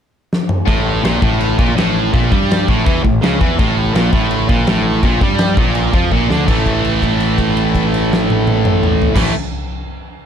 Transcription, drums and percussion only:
0.33 snare medium
0.49 mid tom medium
0.68 kick medium
0.68 china medium
1.05 snare loud
1.05 china medium
1.22 kick loud
1.40 china medium
1.59 kick loud
1.78 snare loud
1.78 china medium
2.14 kick loud
2.14 china medium
2.32 kick loud
2.51 snare loud
2.51 china medium
2.68 kick loud
2.86 kick loud
2.86 china medium
3.05 kick medium
3.23 snare loud
3.23 china medium
3.41 kick loud
3.59 kick loud
3.59 china medium
3.95 snare loud
3.95 china medium
4.13 kick loud
4.31 china medium
4.49 kick loud
4.67 snare loud
4.67 china medium
5.03 kick loud
5.03 china medium
5.21 kick loud
5.38 snare loud
5.38 china medium
5.57 kick loud
5.75 china medium
5.94 kick loud
6.12 kick medium
6.30 snare medium
6.48 kick loud
6.48 crash medium
6.66 kick medium
6.66 crash soft
6.85 crash soft
7.02 kick medium
7.02 crash soft
7.20 crash soft
7.38 kick medium
7.38 crash soft
7.57 crash soft
7.75 kick medium
7.75 crash medium
7.94 crash medium
8.13 snare loud
8.30 high tom medium
8.47 high tom medium
8.65 mid tom loud
8.83 mid tom loud
9.02 floor tom loud
9.16 kick loud
9.16 snare loud
9.16 crash loud

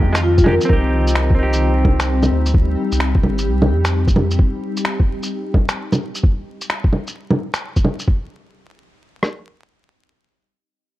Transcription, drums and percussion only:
0.00 kick medium
0.15 finger snap loud
0.15 shaker medium
0.38 kick loud
0.38 shaker soft
0.46 low bongo medium
0.61 shaker medium
0.70 kick loud
1.07 shaker medium
1.15 finger snap loud
1.30 kick loud
1.53 shaker medium
1.85 kick loud
1.85 low bongo soft
2.00 finger snap loud
2.00 shaker medium
2.23 low bongo soft
2.23 shaker soft
2.46 shaker medium
2.54 kick loud
2.92 shaker medium
3.00 finger snap loud
3.15 kick loud
3.23 low bongo soft
3.38 shaker medium
3.62 low bongo medium
3.85 finger snap loud
3.85 shaker medium
4.07 kick loud
4.07 shaker soft
4.16 low bongo medium
4.31 shaker medium
4.39 kick loud
4.77 shaker medium
4.85 finger snap loud
5.00 kick loud
5.23 shaker medium
5.54 kick loud
5.54 low bongo soft
5.69 finger snap loud
5.69 shaker medium
5.92 low bongo soft
5.92 shaker soft
6.15 shaker medium
6.23 kick loud
6.61 shaker medium
6.70 finger snap medium
6.84 kick loud
6.93 low bongo soft
7.07 shaker soft
7.31 low bongo medium
7.54 finger snap loud
7.54 shaker medium
7.76 kick loud
7.76 shaker soft
7.84 low bongo soft
7.99 shaker soft
8.08 kick loud
9.23 cross-stick medium

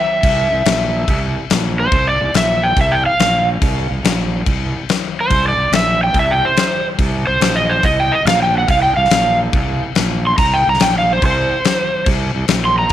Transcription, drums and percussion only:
0.23 kick loud
0.23 crash medium
0.65 snare loud
0.65 crash medium
1.08 kick loud
1.08 crash medium
1.50 snare loud
1.50 crash medium
1.92 kick loud
1.92 crash medium
2.34 snare loud
2.34 crash medium
2.77 kick loud
2.77 crash medium
3.19 snare loud
3.19 crash medium
3.62 kick loud
3.62 crash medium
4.05 snare loud
4.05 crash medium
4.46 kick loud
4.46 crash medium
4.89 snare loud
4.89 crash medium
5.31 kick loud
5.31 crash medium
5.73 snare loud
5.73 crash medium
6.14 kick loud
6.14 crash medium
6.57 snare loud
6.57 crash medium
6.99 kick loud
6.99 crash medium
7.41 snare loud
7.41 crash medium
7.83 kick loud
7.83 crash medium
8.26 snare loud
8.26 crash medium
8.68 kick loud
8.68 crash medium
9.05 snare soft
9.10 snare loud
9.10 crash medium
9.53 kick loud
9.53 crash medium
9.95 snare loud
9.95 crash medium
10.38 kick loud
10.38 crash medium
10.74 snare soft
10.80 snare loud
10.80 crash medium
11.22 kick loud
11.22 crash medium
11.64 snare loud
11.64 crash medium
12.06 kick loud
12.06 crash medium
12.48 snare loud
12.48 crash medium
12.89 crash medium

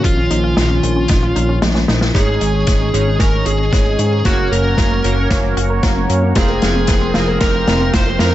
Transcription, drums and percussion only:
0.04 kick loud
0.04 closed hi-hat loud
0.31 closed hi-hat medium
0.57 snare loud
0.57 closed hi-hat loud
0.83 closed hi-hat medium
1.08 kick loud
1.08 snare medium
1.08 closed hi-hat loud
1.36 closed hi-hat medium
1.62 snare loud
1.62 closed hi-hat loud
1.74 snare soft
1.88 snare medium
1.88 closed hi-hat medium
2.01 snare medium
2.15 kick medium
2.15 snare medium
2.15 closed hi-hat loud
2.41 closed hi-hat medium
2.67 kick loud
2.67 snare soft
2.67 closed hi-hat loud
2.94 closed hi-hat medium
3.20 kick loud
3.20 snare medium
3.20 closed hi-hat loud
3.46 closed hi-hat medium
3.73 kick loud
3.73 snare medium
3.73 closed hi-hat loud
3.99 closed hi-hat medium
4.25 kick loud
4.25 snare medium
4.25 closed hi-hat medium
4.53 closed hi-hat medium
4.78 kick loud
4.78 snare medium
4.78 closed hi-hat loud
5.04 closed hi-hat medium
5.30 kick loud
5.30 snare medium
5.30 closed hi-hat loud
5.57 closed hi-hat medium
5.83 kick loud
5.83 snare medium
5.83 closed hi-hat loud
6.10 closed hi-hat medium
6.35 kick loud
6.35 snare medium
6.35 closed hi-hat medium
6.62 snare medium
6.62 closed hi-hat medium
6.87 kick loud
6.87 snare medium
6.87 closed hi-hat loud
7.14 snare medium
7.14 closed hi-hat medium
7.41 kick loud
7.41 snare medium
7.41 closed hi-hat loud
7.68 snare medium
7.68 closed hi-hat medium
7.94 kick loud
7.94 snare medium
7.94 closed hi-hat loud
8.19 snare medium
8.19 closed hi-hat medium

